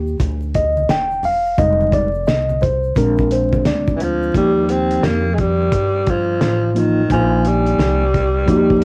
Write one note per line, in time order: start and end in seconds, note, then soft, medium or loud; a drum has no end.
0.00 0.17 D#2 medium
0.00 0.16 G4 medium
0.07 shaker soft
0.19 0.89 D2 loud
0.19 kick medium
0.19 closed hi-hat loud
0.19 shaker medium
0.42 shaker medium
0.54 0.91 D#5 medium
0.54 kick medium
0.54 closed hi-hat medium
0.54 shaker medium
0.77 high conga medium
0.77 shaker soft
0.89 1.55 E1 medium
0.89 1.25 G5 loud
0.89 snare loud
0.89 closed hi-hat medium
0.89 shaker medium
1.11 shaker soft
1.23 1.60 F5 loud
1.23 open hi-hat medium
1.23 low conga medium
1.23 shaker soft
1.46 shaker soft
1.57 2.24 F1 loud
1.57 2.07 G3 medium
1.57 2.08 G#3 medium
1.57 2.08 D#4 medium
1.57 1.94 D#5 loud
1.57 kick loud
1.57 closed hi-hat medium
1.57 shaker medium
1.81 high conga medium
1.81 shaker soft
1.92 2.29 D5 loud
1.92 kick medium
1.92 closed hi-hat medium
1.92 high conga soft
1.92 shaker soft
2.14 shaker soft
2.26 2.93 C2 loud
2.26 2.63 D#5 loud
2.26 snare loud
2.26 closed hi-hat medium
2.26 shaker medium
2.49 high conga medium
2.49 shaker soft
2.61 2.94 C5 medium
2.61 kick medium
2.61 closed hi-hat medium
2.61 low conga medium
2.61 shaker soft
2.83 shaker soft
2.95 3.62 A#1 loud
2.95 4.31 G#3 medium
2.95 4.31 C4 medium
2.95 4.31 D4 medium
2.95 3.32 A#4 loud
2.95 kick loud
2.95 closed hi-hat loud
2.95 high conga soft
2.95 shaker medium
3.17 kick medium
3.17 shaker medium
3.31 3.64 C5 medium
3.31 closed hi-hat medium
3.31 shaker soft
3.53 kick loud
3.53 high conga medium
3.53 shaker soft
3.65 4.31 D2 medium
3.65 3.98 D5 medium
3.65 snare loud
3.65 closed hi-hat medium
3.65 shaker medium
3.87 kick medium
3.87 shaker soft
3.96 4.04 E3 medium
3.96 closed hi-hat medium
3.96 low conga medium
3.96 shaker soft
4.03 4.36 F3 medium
4.23 shaker soft
4.34 5.00 D#2 medium
4.34 5.26 F3 medium
4.34 4.72 G3 loud
4.34 5.27 A#3 medium
4.34 5.28 D#4 medium
4.34 kick loud
4.34 closed hi-hat medium
4.38 5.28 G4 medium
4.69 5.07 C4 loud
4.69 closed hi-hat medium
4.91 closed hi-hat soft
5.03 5.69 F2 loud
5.03 5.36 A#3 medium
5.03 snare loud
5.03 closed hi-hat medium
5.35 5.41 G#3 medium
5.35 closed hi-hat medium
5.39 6.11 G3 loud
5.39 kick medium
5.72 6.38 G2 medium
5.72 kick medium
5.72 closed hi-hat loud
6.07 6.73 F3 medium
6.07 kick medium
6.07 closed hi-hat medium
6.41 7.07 A1 loud
6.41 snare loud
6.41 closed hi-hat medium
6.73 6.80 F3 medium
6.73 7.00 F3 medium
6.73 7.01 A#3 medium
6.73 7.02 D#4 medium
6.73 closed hi-hat medium
6.78 7.12 D#3 medium
6.78 7.02 F4 medium
7.09 7.76 A#1 loud
7.09 8.02 F3 medium
7.09 8.02 A#3 medium
7.09 8.03 D#4 medium
7.09 8.04 G#5 medium
7.09 kick loud
7.09 closed hi-hat medium
7.13 7.49 F3 medium
7.45 8.84 G3 loud
7.45 closed hi-hat medium
7.66 closed hi-hat soft
7.79 8.44 C2 medium
7.79 snare loud
7.79 closed hi-hat medium
8.14 kick medium
8.14 closed hi-hat medium
8.46 8.84 D#2 loud
8.46 8.84 F3 medium
8.46 8.84 A#3 medium
8.46 8.84 D#4 medium
8.46 8.57 F#4 medium
8.46 kick medium
8.46 closed hi-hat loud
8.57 8.84 G4 loud
8.70 kick medium